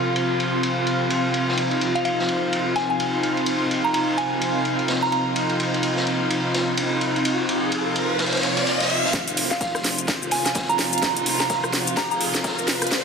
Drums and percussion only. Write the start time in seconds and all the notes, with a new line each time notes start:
0.16 ride
0.40 ride
0.63 ride
0.87 ride
1.10 ride
1.34 ride
1.49 snare
1.57 ride
1.71 ride
1.81 ride
1.95 ride
2.05 ride
2.19 snare
2.28 ride
2.53 ride
2.76 snare, ride
3.00 ride
3.23 ride
3.37 ride
3.46 ride
3.71 ride
3.94 ride
4.18 ride
4.41 ride
4.65 ride
4.79 ride
4.88 snare, ride
5.03 snare
5.12 ride
5.36 ride
5.49 ride
5.60 ride
5.74 ride
5.83 ride
5.97 snare
6.07 ride
6.30 ride
6.54 snare, ride
6.77 ride
7.01 ride
7.16 ride
7.25 ride
7.49 ride
7.72 ride
7.96 ride
8.18 snare, ride
8.26 snare, ride
8.32 snare, ride
8.37 snare, ride
8.43 snare, ride
8.57 snare, ride
8.67 snare, ride
8.80 snare, ride
8.90 ride
9.05 snare
9.13 kick, snare, closed hi-hat, ride, shaker
9.28 closed hi-hat, ride, shaker
9.37 open hi-hat, ride
9.51 snare, ride, shaker
9.60 kick, snare, closed hi-hat, ride, shaker
9.74 cross-stick, snare, shaker
9.84 snare, open hi-hat, ride
9.98 closed hi-hat, shaker
10.08 kick, snare, closed hi-hat, ride, shaker
10.22 shaker
10.31 snare, open hi-hat, ride
10.46 snare, closed hi-hat, shaker
10.55 kick, snare, closed hi-hat, ride, shaker
10.69 shaker
10.79 snare, open hi-hat, ride
10.93 closed hi-hat, ride, shaker
10.98 closed hi-hat
11.03 kick, snare, closed hi-hat, ride, shaker
11.17 closed hi-hat, shaker
11.26 open hi-hat, ride
11.40 snare, shaker
11.50 kick, snare, closed hi-hat, ride, shaker
11.64 cross-stick, shaker
11.73 snare, open hi-hat, ride
11.87 closed hi-hat, shaker
11.97 kick, snare, closed hi-hat, ride, shaker
12.11 shaker
12.21 open hi-hat, ride
12.35 snare, closed hi-hat, shaker
12.44 kick, snare, closed hi-hat, ride, shaker
12.58 shaker
12.68 snare, open hi-hat, ride
12.82 cross-stick, snare, closed hi-hat, shaker
12.87 closed hi-hat
12.91 kick, snare, closed hi-hat, ride, shaker